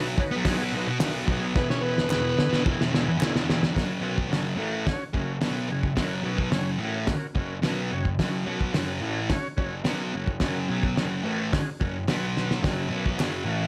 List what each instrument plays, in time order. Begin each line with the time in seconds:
Already playing: distorted electric guitar B2 F#3 B3
0.17 transistor combo organ D#4 F#4 B4, muted distorted electric guitar stroke, kick
0.31 distorted electric guitar B3
0.36 distorted electric guitar F#3
0.45 transistor combo organ D#4 F#4 G#4, kick, snare, open hi-hat
0.58 distorted electric guitar B3
0.62 distorted electric guitar F#3
0.72 distorted electric guitar B2 F#3, transistor combo organ D#4 F#4
0.76 distorted electric guitar B3, transistor combo organ B4
0.87 muted distorted electric guitar stroke
1.00 distorted electric guitar B2 F#3, transistor combo organ D#4 F#4, snare, clap, open hi-hat
1.04 distorted electric guitar B3, transistor combo organ A#4
1.26 distorted electric guitar B2 F#3, kick
1.30 distorted electric guitar B3, transistor combo organ D#4 F#4 G#4
1.40 distorted electric guitar B3
1.45 distorted electric guitar F#3
1.54 distorted electric guitar E2 B2, transistor combo organ B3 E4 B4, kick, snare
1.58 distorted electric guitar E3, transistor combo organ G#4
1.70 transistor combo organ C#4, snare
1.81 transistor combo organ B3 E4 G#4
1.86 transistor combo organ B4
1.95 distorted electric guitar E3, snare
2.00 distorted electric guitar B2
2.09 distorted electric guitar E2 B2, transistor combo organ B3 E4 G#4, snare, clap
2.13 distorted electric guitar E3, transistor combo organ B4
2.37 transistor combo organ E4 G#4 B4, muted distorted electric guitar stroke, snare
2.49 distorted electric guitar E3, snare
2.54 distorted electric guitar B2
2.66 transistor combo organ E4 G#4 A#4, kick
2.77 distorted electric guitar E3
2.81 distorted electric guitar B2, snare
2.92 distorted electric guitar E2 B2, transistor combo organ E4 G#4 B4, snare
2.96 distorted electric guitar E3
3.07 muted distorted electric guitar stroke
3.18 distorted electric guitar E2 B2, transistor combo organ E4 G#4 A#4, snare, clap
3.23 distorted electric guitar E3
3.36 snare
3.46 distorted electric guitar E2 B2, transistor combo organ E4 G#4 B4, snare
3.51 distorted electric guitar E3
3.60 distorted electric guitar E3, snare
3.65 distorted electric guitar B2
3.73 distorted electric guitar F#2 C#3 F#3, transistor combo organ C#4 F#4 A#4, kick
3.78 snare, open hi-hat
4.01 distorted electric guitar B2 F#3 B3, transistor combo organ C#4 F#4 A#4
4.18 kick
4.28 distorted electric guitar F#2 C#3 F#3, transistor combo organ C#4 F#4 A#4
4.33 snare, open hi-hat
4.55 distorted electric guitar A2 E3, transistor combo organ C#4 F#4 A#4
4.59 distorted electric guitar A3
4.85 transistor combo organ C#4 F#4 C#5, muted distorted electric guitar stroke, kick, snare, open hi-hat
5.14 distorted electric guitar F#2 C#3, transistor combo organ C#4 F#4 A#4, kick
5.41 distorted electric guitar B2 F#3 B3, transistor combo organ C#4 F#4 A#4, snare, open hi-hat
5.69 distorted electric guitar F#2 C#3, transistor combo organ C#4 F#4 G#4
5.83 kick
5.96 distorted electric guitar F#2 C#3 F#3, transistor combo organ C#4 F#4 A#4, kick, snare, open hi-hat
6.23 distorted electric guitar B2 F#3 B3, transistor combo organ C#4 F#4 A#4
6.38 kick
6.51 distorted electric guitar F#2 C#3 F#3, transistor combo organ C#4 F#4 C#5, snare, open hi-hat
6.78 distorted electric guitar A2 E3 A3
6.83 transistor combo organ C#4 F#4 A#4
7.07 transistor combo organ C#4, muted distorted electric guitar stroke, kick, snare, open hi-hat
7.11 transistor combo organ F#4 A#4
7.35 distorted electric guitar F#2 C#3, transistor combo organ C#4 F#4 A#4, kick
7.62 distorted electric guitar B2 F#3 B3, transistor combo organ C#4 F#4 A#4, snare, open hi-hat
7.91 distorted electric guitar F#2 C#3, transistor combo organ C#4 F#4 C#5
8.05 kick
8.19 distorted electric guitar F#2 C#3 F#3, transistor combo organ C#4 F#4 A#4, kick, snare, open hi-hat
8.45 distorted electric guitar B2 F#3 B3, transistor combo organ C#4 F#4
8.50 transistor combo organ A#4
8.61 kick
8.72 distorted electric guitar F#2 C#3 F#3, transistor combo organ C#4 F#4 A#4, snare, open hi-hat
9.01 distorted electric guitar A2 E3 A3, transistor combo organ C#4 F#4 A#4
9.30 transistor combo organ C#4 F#4 C#5, muted distorted electric guitar stroke, kick, snare, open hi-hat
9.56 distorted electric guitar F#2 C#3, transistor combo organ C#4 F#4 C#5, kick
9.85 distorted electric guitar B2 F#3 B3, transistor combo organ C#4 F#4, snare, open hi-hat
9.89 transistor combo organ A#4
10.14 distorted electric guitar F#2 C#3, transistor combo organ C#4 F#4 A#4
10.27 kick
10.40 distorted electric guitar F#2 C#3 F#3, transistor combo organ C#4 F#4 A#4, kick, snare, open hi-hat
10.68 distorted electric guitar B2 F#3 B3, transistor combo organ C#4 F#4 G#4
10.83 kick
10.96 distorted electric guitar F#2 C#3 F#3, transistor combo organ C#4 A#4, snare, open hi-hat
11.00 transistor combo organ F#4
11.24 distorted electric guitar A2 E3 A3, transistor combo organ C#4 F#4 A#4
11.52 transistor combo organ C#4 F#4 G#4, muted distorted electric guitar stroke, kick, snare, open hi-hat
11.80 distorted electric guitar F#2 C#3, transistor combo organ C#4 F#4 A#4, kick
12.07 distorted electric guitar B2 F#3 B3, transistor combo organ B3 F#4 B4, snare, open hi-hat
12.37 transistor combo organ B3 F#4 B4, snare
12.51 snare
12.61 distorted electric guitar F#2 C#3 F#3, kick, snare, open hi-hat
12.66 transistor combo organ C#4 F#4 A#4
12.89 distorted electric guitar B2 F#3 B3, transistor combo organ C#4
12.94 transistor combo organ F#4 A#4
13.06 kick
13.17 distorted electric guitar F#2 C#3 F#3, transistor combo organ C#4 F#4 A#4, snare, clap, open hi-hat
13.44 distorted electric guitar A2 E3 A3, transistor combo organ C#4 F#4 A#4